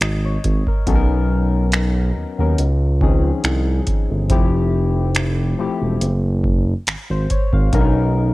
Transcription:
0.01 G#1 D#5, finger snap, closed hi-hat
0.25 C#5
0.44 G#1, kick, closed hi-hat
0.67 A#4, kick
0.86 B1 F#3 B3 C#4 D#4 A4, kick, closed hi-hat
0.95 A#4
1.72 finger snap, closed hi-hat
2.16 D#2
2.38 D#2 F#3 B3 C#4 D#4 A#4
2.58 C#2, closed hi-hat
3.01 D#3 C4 C#4 D#4 G#4, kick
3.08 F3
3.44 C2, finger snap, closed hi-hat
3.87 kick, closed hi-hat
4.10 G1
4.30 F1 F3 A3 C4 E4 G4, kick, closed hi-hat
5.15 finger snap, closed hi-hat
5.58 E1 F3 A3 C4 E4 G4
5.82 E1
6.01 F#1, closed hi-hat
6.44 kick
6.87 G#1, finger snap, closed hi-hat
7.10 G#1 C5
7.30 C#5, kick, closed hi-hat
7.53 G#1 F5, kick
7.72 B1 F#3 B3 C#4 D4 A#4, kick, closed hi-hat
7.80 D#4

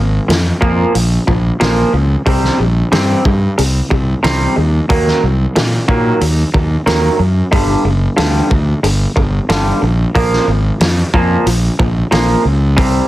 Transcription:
Already playing: G#1 A#2 F3
0.28 F2 A#2 F3, snare, open hi-hat
0.61 F2 A#2 F3 A#3, kick
0.94 A#1 A#2 F3, open hi-hat
1.27 A#1 A#2 F3, kick
1.60 A#1 A#2 F3 A#3, snare, open hi-hat
1.93 C#2 A#2 F3
2.26 C2 C3 G3 C4, kick, open hi-hat
2.44 snare
2.59 A#1 C3 G3
2.92 G2 C3 G3 C4, snare, open hi-hat
3.25 G2 C3 G3, kick
3.58 C2 C3 G3, open hi-hat
3.90 C2 C3 G3, kick
4.23 C2 C3 G3 C4, snare, open hi-hat
4.56 D#2 C3 G3
4.89 D#2 D#3 F#3 A#3, kick, open hi-hat
5.08 snare
5.23 C2 D#3 F#3
5.55 A#2 D#3 F#3, snare, open hi-hat
5.88 A#2 D#3 F#3 A#3, kick
6.21 D#2 D#3 F#3, open hi-hat
6.54 D#2 D#3 F#3, kick
6.86 D#2 D#3 F#3 A#3, snare, open hi-hat
7.19 F#2 D#3 F#3
7.51 G1 G2 D3 G3, kick, open hi-hat
7.84 F#1 G2 D3
8.16 D2 G2 D3 G3, snare, open hi-hat
8.50 D2 G2 D3, kick
8.83 G1 G2 D3, open hi-hat
9.16 G1 G2 D3, kick
9.49 G1 G2 D3 G3, snare, open hi-hat
9.82 A#1 G2 D3
10.15 A#1 A#2 F3 A#3, kick, open hi-hat
10.33 snare
10.47 G#1 A#2 F3
10.80 F2 A#2 F3, snare, open hi-hat
11.14 F2 A#2 F3 A#3, kick
11.46 A#1 A#2 F3, open hi-hat
11.79 A#1 A#2 F3, kick
12.11 A#1 A#2 F3 A#3, snare, open hi-hat
12.44 C#2 A#2 F3
12.77 C2 C3 G3 C4, kick, open hi-hat

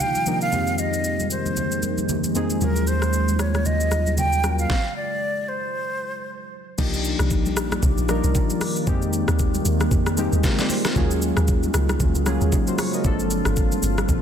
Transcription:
Already playing: C2 C3 D#3 F3 A#3 D4 D#4 F4 G4 D5
0.00 G5, low conga, shaker
0.15 high conga, shaker
0.26 C3 F3 A#3 D4 D#4 A#4, high conga, shaker
0.41 F5, shaker
0.52 F2 D#3 G#3 A#3 C4 D#4 G4, low conga, shaker
0.67 shaker
0.78 D#5, shaker
0.94 shaker
1.04 shaker
1.20 high conga, shaker
1.31 C5, shaker
1.46 high conga, shaker
1.57 low conga, shaker
1.72 shaker
1.83 high conga, shaker
1.98 high conga, shaker
2.09 low conga, shaker
2.24 high conga, shaker
2.35 F2 G#3 A#3 C4 D#4 G#4, high conga, shaker
2.50 shaker
2.61 D#2 C#3 F#3 A#3 C#4 F4 G#4 A#4, low conga, shaker
2.76 shaker
2.87 C5, shaker
3.02 cross-stick, shaker
3.13 shaker
3.28 high conga, shaker
3.39 C#5, cross-stick, shaker
3.54 cross-stick, high conga, shaker
3.65 D#5, low conga, shaker
3.80 shaker
3.91 cross-stick, high conga, shaker
4.07 high conga, shaker
4.18 G5, low conga, shaker
4.33 high conga, shaker
4.43 F#3 A#3 C#4 F4 A#4, cross-stick, high conga, shaker
4.59 F5, shaker
4.70 kick, snare
4.96 D5
5.48 C5
6.78 C2 D#3 F3 A#3 D4 D#4 F4 G4 D5, kick, crash, low conga, shaker
6.94 shaker
7.05 shaker
7.19 C2, cross-stick, shaker
7.30 kick, shaker
7.46 high conga, shaker
7.57 A#1, cross-stick, shaker
7.72 cross-stick, high conga, shaker
7.83 C2, kick, low conga, shaker
7.98 A#1, shaker
8.08 F3 A#3 D4 D#4 A#4, cross-stick, high conga, shaker
8.24 C2, high conga, shaker
8.35 kick, low conga, shaker
8.50 high conga, shaker
8.61 cross-stick, open hi-hat, high conga, shaker
8.76 shaker
8.87 F2 G#3 A#3 C4 D#4 G4, kick, low conga, shaker
9.02 shaker
9.13 shaker
9.28 D#2, cross-stick, shaker
9.39 kick, shaker
9.54 high conga, shaker
9.65 D#2, shaker
9.80 cross-stick, high conga, shaker
9.91 F2, kick, low conga, shaker
10.06 cross-stick, shaker
10.17 G#3 A#3 C4 D#4 G4, high conga, shaker
10.33 D#2, high conga, shaker
10.44 F4 A#4, kick, snare, low conga, shaker
10.59 G#4 D5, snare, high conga, shaker
10.70 G4 C5, open hi-hat, high conga, shaker
10.85 F4 A#4, cross-stick, snare, shaker
10.95 D#2 C#3 F#3 G#3 A#3 C#4 F4 G#4, kick, low conga, shaker
11.11 shaker
11.22 shaker
11.37 D#2, cross-stick, shaker
11.48 kick, shaker
11.63 high conga, shaker
11.74 C#2, cross-stick, shaker
11.89 cross-stick, high conga, shaker
12.00 D#2, kick, low conga, shaker
12.15 C#2, shaker
12.26 F#3 A#3 C#4 F4 G#4, cross-stick, high conga, shaker
12.41 D#2, high conga, shaker
12.52 D#4 G#4, kick, low conga, shaker
12.67 F#4 C5, high conga, shaker
12.78 G#4 C#5, cross-stick, open hi-hat, high conga, shaker
12.93 A#4 D#5, shaker
13.04 G1 C3 F3 A#3 C4 D4 A4, kick, low conga, shaker
13.20 shaker
13.31 shaker
13.45 G1, cross-stick, shaker
13.56 kick, shaker
13.72 high conga, shaker
13.83 G1, shaker
13.98 cross-stick, high conga, shaker
14.09 A#1, kick, low conga, shaker

